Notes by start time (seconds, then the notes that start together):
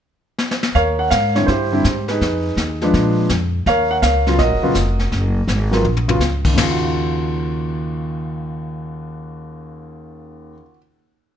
0.39 snare
0.51 snare
0.63 snare
0.75 D#2 A#4 C#5 F5, brush sweep, kick, snare
0.99 F#5
1.10 G#2 F5, kick, snare, hi-hat pedal
1.35 D3 G3 C4 E4 C#5, snare
1.47 G2 E4 G4 C5, brush sweep, kick, snare
1.72 D3 G3 C4 E4
1.84 G#2, kick, snare, hi-hat pedal
2.08 D#4 G#4 B4, snare
2.21 F2, brush sweep, kick, snare
2.57 D#2, kick, snare, hi-hat pedal
2.81 F3 G#3 D4 B4, snare
2.93 A#2, brush sweep, kick, snare
3.29 F2, kick, snare, hi-hat pedal
3.66 D#2 A#4 C#5 F5, brush sweep, kick, snare
3.91 F#5
4.02 C#2 A#4 C#5 F5, kick, snare, hi-hat pedal
4.27 C#3 F#3 B3 F4, snare
4.39 A#1 A#4 D#5, brush sweep, kick, snare
4.43 F#4
4.51 F#1
4.62 D#1 C#3 F#3 B3 F4
4.75 F1, kick, snare, hi-hat pedal
4.99 snare
5.12 F#1, brush sweep, kick, snare
5.47 G#1, kick, snare, hi-hat pedal
5.71 F#3 B3 F4 A#4, snare
5.84 A#1, mid tom
5.97 floor tom
6.08 C#3 F#3 B3 F4, floor tom
6.19 C#2, snare, hi-hat pedal
6.45 D#2, kick, crash
6.54 D#2 C#3
6.58 snare, floor tom, crash
6.62 F4
6.71 F#4